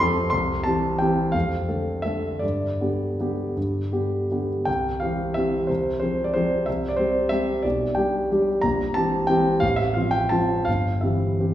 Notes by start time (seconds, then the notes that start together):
Already playing: F2 B5 D6 E6
0.00 F3 C4 A4 C6
0.30 C2 C6
0.64 E3 C4 G4 A5
0.99 E3 C4 G4 G5
1.32 F2 F5
1.68 D3 A3 A4
2.02 D3 A3 A4 E5
2.39 G2 D5
2.81 D3 B3 G4
3.20 D3 B3 G4
3.57 G2
3.92 D3 B3 G4
4.31 D3 B3 G4
4.65 C2 G5
5.00 E3 C4 G4 F5
5.34 E3 C4 G4 E5
5.67 C2 C5
6.00 F3 C4 G#4 C5
6.24 D5
6.34 F3 C4 G#4 C5
6.66 C2 E5
6.88 D5
6.97 G3 C4 G4 C5
7.29 G3 C4 G4 E5
7.63 B1 D5
7.95 G3 D4 G4 G5
8.32 G3 D4 G4
8.62 A#1 A#5
8.94 E3 C4 G4 A5
9.27 E3 C4 G4 G5
9.60 A1 F5
9.76 E5
9.94 F3 C4 F4 F5
10.11 G5
10.29 F3 C4 F4 A5
10.65 G1 F5
11.01 E3 C4 G4 E5
11.40 E3 C4 G4